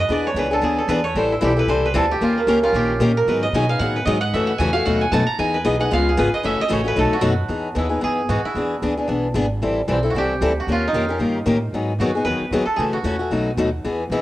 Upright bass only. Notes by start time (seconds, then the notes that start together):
0.09 E2
0.34 C#2
0.61 D2
0.88 E2
1.15 A1
1.42 B1
1.67 C2
1.95 D2
2.21 D#2
2.47 C#2
2.73 A#1
3.00 A#2
3.26 G#2
3.53 B2
3.80 A2
4.06 G#2
4.33 F#2
4.59 E2
4.86 D#2
5.12 F#2
5.28 muted upright bass stroke
5.38 E2
5.65 B1
5.92 C#2
6.17 G#1
6.33 muted upright bass stroke
6.44 F#1
6.61 muted upright bass stroke
6.71 A1
6.96 B1
7.11 muted upright bass stroke
7.23 F#2
7.48 E2
7.75 D#2
8.03 F#2
8.29 G#2
8.43 muted upright bass stroke
8.54 E2
8.82 D2
9.08 B1
9.34 G#1
9.62 A1
9.88 B1
10.14 C2
10.41 D2
10.67 D#2
10.93 F2
11.20 G2
11.46 A2
11.73 G#2
11.99 F#2
12.24 E2
12.40 muted upright bass stroke
12.51 D#2
12.66 muted upright bass stroke
12.78 F#2
12.93 muted upright bass stroke
13.03 E2
13.30 B1
13.57 D#2
13.84 E2
14.10 F#2